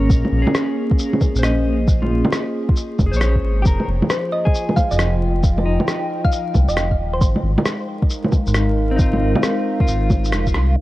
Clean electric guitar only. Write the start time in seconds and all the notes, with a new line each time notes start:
Already playing: A#4 C#5
0.42 G#4
1.39 C5
1.44 D#5
2.02 F4
3.06 G#4
3.12 C5
3.17 C#5
3.62 G4
3.67 A#4
4.45 G#4
5.66 D#4
8.91 C4
8.96 D#4
9.01 F4
9.81 F4